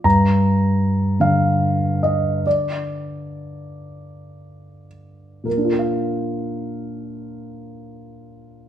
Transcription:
0.04 G2 A#5
1.20 D3 F5
2.03 D#5
2.47 D5
5.44 A#2 A#4
5.51 A#3
5.58 D4
5.65 F4
5.72 A#4
5.79 F5

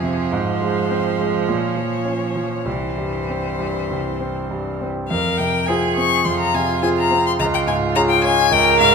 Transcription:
Already playing: F2 C3 F3 C4 G#4
0.03 C3
0.32 G#2 C5
0.62 G#3
0.91 C4
1.19 G#3
1.48 A#2 C#5
1.77 F3
2.05 C#4
2.36 F3
2.66 C2 E3 C5
2.98 G2
3.29 C4
3.59 G2
3.91 C2
4.20 C4
4.51 G2
4.81 C4
5.09 F2 A#4 F5
5.38 C3 G5
5.66 C4 F4 G#4 G#5
5.96 C4 C#6
6.25 F2 F4 C6
6.40 A#5
6.54 C3 G#5
6.83 C4 F4 G#4 G#5
6.98 A#5
7.11 C4
7.27 C6
7.39 C#2 F4 A#5
7.54 G5
7.67 G#2 G#5
7.96 C#4 F4 G#4 A#5
8.10 G5
8.24 C#4 G#5
8.51 C#2 A#4 G5
8.80 G#2 F5

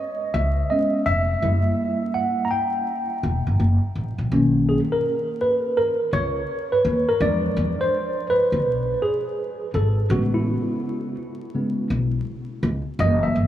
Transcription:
Already playing: D#5
0.34 C#2 E5
0.70 G#3 B3 C#4 D#5
1.06 F1 E5
1.42 F#1 G3 A#3 E4
2.14 F#5
2.45 A#5
2.51 G5
3.23 E1
3.47 G1
3.60 F#1
3.95 A1
4.18 A#1
4.32 B1 D#3 A#3 C#4
4.69 G#4
4.92 A#4
5.41 B4
5.77 A#4
6.13 C#2 C#5
6.72 B4
6.85 D#2
7.09 A#4
7.20 E2 F3 G#3 D4 D5
7.57 E2
7.81 C5
8.30 B4
8.52 D2
8.65 B1
9.02 G#4
9.74 G#1 A4
10.10 A1 C#3 G#3 B3 F#4
10.34 E4
11.54 C#3 G#3 B3
11.90 B1
12.63 C#2
12.99 F#1 E3 G3 A#3 D#5
13.23 E5
13.35 G1

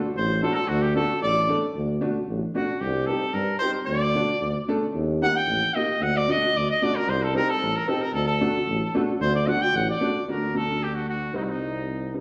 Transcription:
0.16 A1 C5
0.42 A3 D4 F#4 A4
0.51 A4 A#4
0.68 D2 F#4
0.82 G4
0.95 A3 D4 F#4 A4
1.22 A1 D5
1.48 A3 D4 A4
1.75 D2
2.01 A3 D4 F#4
2.28 A1
2.55 A3 D4 F#4
2.81 C2 G4
3.06 C4 D#4 G4 A4
3.34 G2 A#4
3.59 C4 D#4 G4 C5
3.86 D2 D5
4.15 A3 D4 F#4
4.41 D2
4.68 A3 D4 A4
4.95 D#2
5.22 A#3 D#4 G4 F#5
5.36 G5
5.48 A1
5.75 A#3 D#4 G4 D#5
6.01 D2 F#5
6.17 D5
6.28 A3 D4 F#4 D#5
6.55 D2 D5
6.70 D#5
6.82 A3 D4 F#4 D5
6.96 A#4
7.08 C2 C5
7.23 A4
7.34 C4 D#4 G4 A#4
7.49 A4
7.61 A1
7.76 A#4
7.88 C4 D#4 G4 A4
8.01 A#4
8.14 D2 A4
8.27 A4
8.41 A3 D4 F#4
8.68 A1
8.95 A3 D4 F#4
9.21 D2 C5
9.35 D5
9.47 A3 D4 F#4 F#5
9.61 G5
9.74 A1 F#5
9.90 D5
10.01 A3 D4 F#4
10.27 D2 A3 D4 F#4 A#4
10.54 A3 D4 F#4 A4
10.83 G4
10.95 F#4
11.09 F#4
11.34 C2 G3 C4 D#4
11.43 F#4
11.49 D#4
12.14 G3 C4 D#4

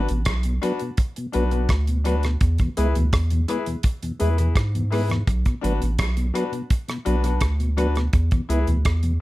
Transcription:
0.08 A1 B2, closed hi-hat
0.25 B1, kick, cross-stick, closed hi-hat
0.43 B2, closed hi-hat
0.62 F#3 B3 D4 F#4 B4, closed hi-hat
0.79 B2, closed hi-hat
0.97 kick, closed hi-hat
1.16 B2, closed hi-hat
1.32 B1 F#3 B3 D4 F#4 B4, closed hi-hat
1.51 B2 D4 F#4 B4, closed hi-hat
1.69 D2, kick, cross-stick, closed hi-hat
1.87 B2, closed hi-hat
2.04 F#3 B3 D4 F#4 B4, closed hi-hat
2.23 B2, cross-stick, closed hi-hat
2.41 E2, kick, closed hi-hat
2.58 E2 B2, kick, closed hi-hat
2.77 C#2 G#3 B3 E4 G#4 B4, closed hi-hat
2.95 D2 E2 B2, closed hi-hat
3.13 E2, kick, cross-stick, closed hi-hat
3.30 E2 B2, closed hi-hat
3.48 G#3 B3 E4 G#4 B4, closed hi-hat
3.66 E2 B2, closed hi-hat
3.83 kick, closed hi-hat
4.03 E2 B2, closed hi-hat
4.19 E2 G#3 B3 E4 G#4 B4, closed hi-hat
4.38 E2 B2 E4 G#4 B4, closed hi-hat
4.56 G#2, kick, cross-stick, closed hi-hat
4.75 E2 B2, closed hi-hat
4.91 G#3 B3 E4 G#4 B4, open hi-hat
5.09 E2 B2, cross-stick, closed hi-hat
5.27 B1, kick, closed hi-hat
5.45 B2, kick, closed hi-hat
5.61 G#1 F#3 B3 D4 F#4 B4, closed hi-hat
5.80 A1 B2, closed hi-hat
5.99 B1, kick, cross-stick, closed hi-hat
6.17 B2, closed hi-hat
6.34 F#3 B3 D4 F#4 B4, closed hi-hat
6.52 B2, closed hi-hat
6.70 kick, closed hi-hat
6.88 B2, cross-stick, closed hi-hat
7.05 B1 F#3 B3 D4 F#4 B4, closed hi-hat
7.23 B2 D4 F#4 B4, closed hi-hat
7.41 D2, kick, cross-stick, closed hi-hat
7.60 B2, closed hi-hat
7.77 F#3 B3 D4 F#4 B4, closed hi-hat
7.95 B2, cross-stick, closed hi-hat
8.13 E2, kick, closed hi-hat
8.31 E2 B2, kick, closed hi-hat
8.49 C#2 G#3 B3 E4 G#4 B4, closed hi-hat
8.67 D2 E2 B2, closed hi-hat
8.85 E2, kick, cross-stick, closed hi-hat
9.03 E2 B2, closed hi-hat

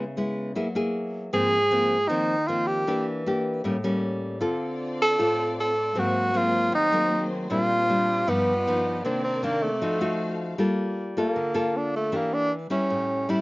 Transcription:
Already playing: C#3
0.17 G#3 B3 E4
0.55 F#3 A#3 E4 G#4
0.75 A#3 E4 G#4
1.33 G#2 F3 A#3 C4 G#4
1.71 F3 A#3 C4
2.08 D#3 F3 A#3 C4 D#4
2.48 F3 A#3 C4 F4
2.67 G4
2.87 E3 A#3 D4 G4
3.26 A#3 D4 G4
3.64 A2 G3 A#3 C#4
3.84 G3 A#3 C#4
4.40 D3 C4 F4 A4 D5
5.02 A4
5.18 A2 C4 F4 A4
5.60 A4
5.95 G#2 F#3 A#3 C4 G#4 C5
5.99 F#4
6.34 F#3 A#3 C4 F4
6.72 D#3 D#4
6.92 F#3 A#3 C4
7.50 A#2 G3 A#3 C4 D4 F4 G4
7.89 G3 C4 D4
8.27 G2 F3 B3 D#4 F4 D#5
8.67 F3 B3 D#4
9.04 C3 D#3 A#3 C4 D4 A#4 D5
9.24 C4
9.43 D#3 A#3 D4
9.63 A3
9.81 F3 A3 D#4 F#4 A4 F5
10.01 A3 D#4 F#4
10.58 G3 A#3 F4 A4
11.17 A#3 F4 A4
11.36 D3
11.54 A#3 F4 A4
11.77 D4
11.96 A3
12.12 E3 A#3 D4 G4
12.17 A#3
12.34 D4
12.70 G3 C#4 E4
12.90 A2
13.29 G3 C#4 E4

